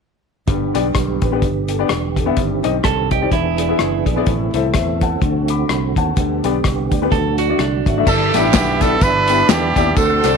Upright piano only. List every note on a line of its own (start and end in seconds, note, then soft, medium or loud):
0.48 1.18 G2 medium
0.74 0.85 B3 medium
0.74 0.85 D4 medium
0.74 0.85 G4 medium
0.74 0.86 D5 medium
1.22 1.27 G4 soft
1.22 1.28 B4 soft
1.32 1.43 B3 medium
1.32 1.43 D4 medium
1.32 1.43 G4 medium
1.32 1.43 B4 medium
1.69 1.74 G4 soft
1.69 1.75 A4 soft
1.79 1.90 B3 medium
1.79 1.90 D4 medium
1.79 1.90 G4 medium
1.79 1.91 D5 medium
2.16 2.22 G4 soft
2.16 2.22 A4 soft
2.26 2.37 B3 medium
2.26 2.37 D4 medium
2.26 2.37 G4 medium
2.26 2.37 E5 medium
2.37 3.08 G2 medium
2.63 2.74 C4 medium
2.63 2.74 D#4 medium
2.63 2.74 G4 medium
2.63 2.75 D#5 medium
3.11 3.17 G4 soft
3.11 3.17 D#5 soft
3.21 3.32 C4 medium
3.21 3.32 D#4 medium
3.21 3.32 G4 medium
3.21 3.32 D5 medium
3.32 4.03 E3 medium
3.58 3.64 G#4 soft
3.58 3.65 D5 soft
3.69 3.80 B3 medium
3.69 3.80 E4 medium
3.69 3.80 G#4 medium
3.69 3.80 E5 medium
4.06 4.11 G#4 soft
4.06 4.12 D5 soft
4.16 4.27 B3 medium
4.16 4.27 E4 medium
4.16 4.27 G#4 medium
4.16 4.27 D5 medium
4.27 4.98 A2 medium
4.54 4.64 C4 medium
4.54 4.65 E4 medium
4.54 4.65 A4 medium
4.54 4.65 E5 medium
4.75 5.01 C5 soft
4.75 5.00 E5 medium
5.02 5.47 F#5 soft
5.02 5.47 A5 medium
5.23 5.93 D3 medium
5.50 5.68 B5 medium
5.50 5.69 D6 medium
5.69 5.95 B5 medium
5.97 6.42 F#5 soft
5.97 6.42 A5 medium
6.17 6.88 D3 medium
6.44 6.55 B3 medium
6.44 6.55 D4 medium
6.44 6.55 G4 medium
6.44 6.55 D5 medium
6.92 6.97 G4 soft
6.92 6.98 D5 soft
7.02 7.12 B3 medium
7.02 7.12 D4 medium
7.02 7.12 G4 medium
7.02 7.13 B4 medium
7.13 7.83 D3 medium
7.39 7.44 F#4 soft
7.39 7.45 D5 soft
7.49 7.60 A3 medium
7.49 7.60 D4 medium
7.49 7.60 F#4 medium
7.49 7.60 D5 medium
7.86 7.92 F#4 soft
7.86 7.92 E5 soft
7.97 8.07 A3 medium
7.97 8.07 D4 medium
7.97 8.08 F#4 medium
7.97 8.08 E5 medium
8.07 8.78 G2 medium
8.34 8.45 B3 medium
8.34 8.45 E4 medium
8.34 8.45 G4 medium
8.34 8.45 D5 medium
8.82 8.92 B3 medium
8.82 8.92 E4 medium
8.82 8.92 G4 medium
8.82 8.93 D5 medium
9.29 9.40 B3 medium
9.29 9.40 E4 medium
9.29 9.40 G4 medium
9.29 9.40 D5 medium
9.76 9.87 B3 medium
9.76 9.87 E4 medium
9.76 9.87 G4 medium
9.76 9.88 D5 medium
9.97 10.37 D3 medium
10.24 10.34 C4 medium
10.24 10.34 F#4 medium
10.24 10.35 A4 medium
10.24 10.35 D5 medium